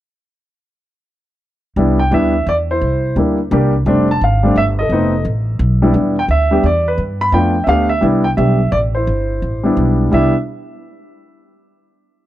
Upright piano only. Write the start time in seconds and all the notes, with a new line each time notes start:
1.77 G3 B3 D4 E4
1.99 G5
2.11 G3 B3 D4 E4 E5
2.49 D5
2.71 E4 C5
3.16 G3 A#3 D4 E4
3.52 G3 A#3 D4 G4
3.86 G3 A3 C4 D4
4.11 A5
4.24 F5
4.43 G3 A3 C4 D4
4.58 E5
4.79 A4 D#5
4.91 A3 B3 C4 D#4
5.82 G3 B3 D4 E4
5.94 G3 B3 D4
6.19 G5
6.31 E5
6.51 G3 B3 D4 G4
6.66 D5
6.88 B4
7.21 B5
7.32 A3 B3 D4 F4 G5
7.64 A3 B3 D4 E5
7.68 G4 F5
7.89 E5
8.01 G3 B3 D4 E4
8.24 G5
8.37 G3 B3 D4 G4 E5
8.72 D5
8.95 E4 C5
9.63 G3 B3 D4 E4
10.12 G3 B3 D4 E4 E5